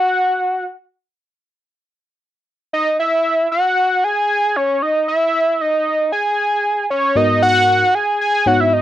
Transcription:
Already playing: F#5
2.73 D#5
3.00 E5
3.52 F#5
4.04 G#5
4.56 C#5
4.82 D#5
5.08 E5
5.61 D#5
6.12 G#5
6.90 C#5
7.15 G#2 B3 D#4 F#4 A#4 D#5
7.43 F#5
7.95 G#5
8.21 G#5
8.46 G#2 B3 D#4 F#4 C#5 F#5
8.60 E5
8.73 D#5

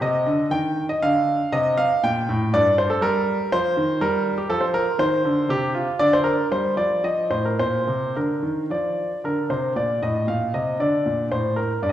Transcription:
0.01 C3 D#5
0.26 D3
0.51 D#3 G5
0.89 D#5
1.02 D3 F5
1.52 C3 D#5
1.77 F5
2.03 A#2 G5
2.29 A2
2.53 G2 D5
2.78 C5
2.90 A4
3.01 G3 A#4
3.52 F3 C5
3.77 D#3
4.01 G3 A#4
4.38 G4
4.49 F3 A4
4.61 C5
4.74 A#4
4.99 D#3 C5
5.25 D3
5.49 C3 G4
5.74 F4
5.99 D3 D5
6.13 C5
6.24 A#4
6.51 G3 C5
6.77 F3 D5
7.04 F3 D#5
7.30 A2 C5
7.45 A#4
7.59 A#2 C5
7.88 C3
8.16 D3 A#4
8.43 D#3
8.70 F3 D5
9.24 D3 A#4
9.50 C3 C5
9.76 A#2 D5
10.02 A2 D#5
10.27 A#2 F5
10.54 C3 D#5
10.80 D3 D5
11.06 A#2
11.31 A2 C5
11.56 A#4
11.82 G2 D5
11.89 D#5

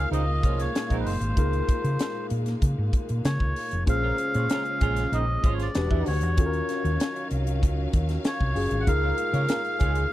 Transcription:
Already playing: A#2 G#3 A#3 D#4 F4 G#4 A#4 F5
0.11 C#2 D#3 G#3 C4 D#4 D#5, closed hi-hat
0.43 C2 F3 A#3 C#4 F4, kick, closed hi-hat
0.60 C#5, snare, closed hi-hat
0.75 snare, closed hi-hat
0.90 A#1 D#3 G#3 C4 D#4, kick, closed hi-hat
1.00 B4
1.05 F#1 C5, open hi-hat
1.21 G#1, closed hi-hat
1.36 C#2 D#4 F4 G#4 A#4, kick, closed hi-hat
1.53 closed hi-hat
1.69 kick, closed hi-hat
1.84 C#3, closed hi-hat
1.99 snare, closed hi-hat
2.30 A#2, closed hi-hat
2.46 snare, closed hi-hat
2.62 C#3, kick, closed hi-hat
2.78 G#2
2.93 kick, closed hi-hat
3.09 A#2, closed hi-hat
3.25 C#3 C#5, snare, closed hi-hat
3.40 C#2, kick
3.56 open hi-hat
3.71 F1, closed hi-hat
3.86 A#1 C#3 G#3 C#4 F4 G#4 C5 F5, kick, closed hi-hat
4.03 A#3 C#4 F4 A#4
4.18 closed hi-hat
4.34 A#2 C#4 F4 G#4 C#5, closed hi-hat
4.50 A#3 C#4 F4 A#4, snare, closed hi-hat
4.65 closed hi-hat
4.81 A#1 G#3 C#4 F4 G#4, kick, closed hi-hat
4.96 snare, closed hi-hat
5.12 A#1 D#3 G#3 C4 D#4 D#5, closed hi-hat
5.43 G#1 F3 C#4 F4, kick, closed hi-hat
5.54 C#5
5.59 D5, snare, closed hi-hat
5.74 E1 E3 G3 D4 F#4 G4 B4 F#5, snare, closed hi-hat
5.90 E2 E3 G3 B3 E4, kick
6.06 D2 C#5, open hi-hat
6.21 E2, closed hi-hat
6.37 D#2 D#3 F#3 C#4 F4 F#4 A4 F5, kick, closed hi-hat
6.46 A#4
6.53 closed hi-hat
6.69 snare, closed hi-hat
6.85 D#2, closed hi-hat
7.00 snare, closed hi-hat
7.16 closed hi-hat
7.31 C2, closed hi-hat
7.47 closed hi-hat
7.63 C#2, kick, closed hi-hat
7.93 D#2, kick, closed hi-hat
8.09 snare, closed hi-hat
8.24 C#5, snare, closed hi-hat
8.41 C2, kick
8.55 F#1 C#4 F4 F#4 G#4, open hi-hat
8.71 G#1, closed hi-hat
8.80 F#5
8.87 C#2 A#2 G#3 A#3 D#4 F4 G#4 A#4 F5, kick, closed hi-hat
9.03 A#3 C#4 F4 A#4
9.18 closed hi-hat
9.33 C#3 C#4 G#4 A#4 C#5, closed hi-hat
9.49 A#3 C#4 F4 A#4, snare, closed hi-hat
9.65 closed hi-hat
9.79 C#2 G#3 C#4 F4 G#4, kick, closed hi-hat
9.95 closed hi-hat

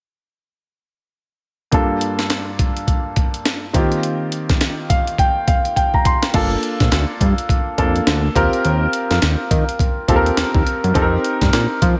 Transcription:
1.72 G2 A#3 D4 F4 A4, kick, closed hi-hat
2.01 closed hi-hat
2.19 snare, closed hi-hat
2.30 snare, closed hi-hat
2.59 kick, closed hi-hat
2.77 closed hi-hat
2.88 kick, closed hi-hat
3.16 kick, closed hi-hat
3.34 closed hi-hat
3.45 snare, closed hi-hat
3.73 D#3 A#3 C4 F4 G4, kick, closed hi-hat
3.92 closed hi-hat
4.03 closed hi-hat
4.32 closed hi-hat
4.49 kick, snare, closed hi-hat
4.61 snare, closed hi-hat
4.90 F5, kick, closed hi-hat
5.07 closed hi-hat
5.18 G5, kick, closed hi-hat
5.48 F5, kick, closed hi-hat
5.65 closed hi-hat
5.76 G5, kick, closed hi-hat
5.94 A#5, kick
6.05 C6, kick, closed hi-hat
6.22 snare, closed hi-hat
6.34 G1 A#3 D4 F4 A4, kick, closed hi-hat, crash
6.63 closed hi-hat
6.80 A#1, kick, snare, closed hi-hat
6.92 D2, snare, closed hi-hat
7.21 G2, kick, closed hi-hat
7.38 closed hi-hat
7.49 kick, closed hi-hat
7.78 F2 A#3 D4 F4 A4, kick, closed hi-hat
7.96 closed hi-hat
8.07 D2, snare, closed hi-hat
8.35 D#2 C4 F4 G4 A#4, kick, closed hi-hat
8.53 closed hi-hat
8.65 D#2, closed hi-hat
8.93 closed hi-hat
9.11 F2, snare, closed hi-hat
9.22 D#2, snare, closed hi-hat
9.51 D#3, kick, closed hi-hat
9.69 closed hi-hat
9.79 kick, closed hi-hat
10.08 D#2 C4 F4 G4 A4, kick, closed hi-hat
10.16 A#4
10.26 closed hi-hat
10.37 D#2, snare, closed hi-hat
10.55 D#2, kick
10.67 closed hi-hat
10.84 F#2, closed hi-hat
10.94 F2 C4 D#4 G4 A4, kick, closed hi-hat
11.02 A#4
11.24 closed hi-hat
11.41 G2, kick, snare, closed hi-hat
11.53 A#2, snare, closed hi-hat
11.82 F3, kick, closed hi-hat

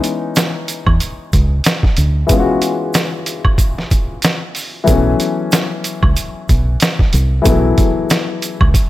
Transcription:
Already playing: E3 G#3 B3 C#4 D#4
0.04 closed hi-hat, shaker
0.36 snare, closed hi-hat, shaker
0.68 closed hi-hat, shaker
0.87 E2, kick, high woodblock
1.00 closed hi-hat, shaker
1.33 C#2, kick, closed hi-hat, shaker
1.64 snare, closed hi-hat, shaker
1.83 kick, snare
1.97 D2, closed hi-hat, shaker
2.27 E3 G#3 B3, kick, closed hi-hat, shaker
2.31 C#4 F4
2.39 F#4
2.62 closed hi-hat, shaker
2.94 snare, closed hi-hat, shaker
3.26 closed hi-hat, shaker
3.45 kick, high woodblock
3.58 kick, closed hi-hat, shaker
3.78 snare
3.91 kick, closed hi-hat, shaker
4.22 snare, closed hi-hat, shaker
4.55 open hi-hat, shaker
4.84 E3 F#3 A3, kick, closed hi-hat, shaker
4.88 B1 B3 C#4
5.20 closed hi-hat, shaker
5.52 snare, closed hi-hat, shaker
5.84 closed hi-hat, shaker
6.03 C#2, kick, high woodblock
6.17 closed hi-hat, shaker
6.49 B1, kick, closed hi-hat, shaker
6.80 snare, closed hi-hat, shaker
6.99 kick, snare
7.13 C2, closed hi-hat, shaker
7.42 E3 F#3 A3, closed hi-hat, shaker
7.46 B1 B3 E4, kick
7.78 kick, closed hi-hat, shaker
8.10 snare, closed hi-hat, shaker
8.42 closed hi-hat, shaker
8.61 C#2, kick, high woodblock
8.74 kick, closed hi-hat, shaker

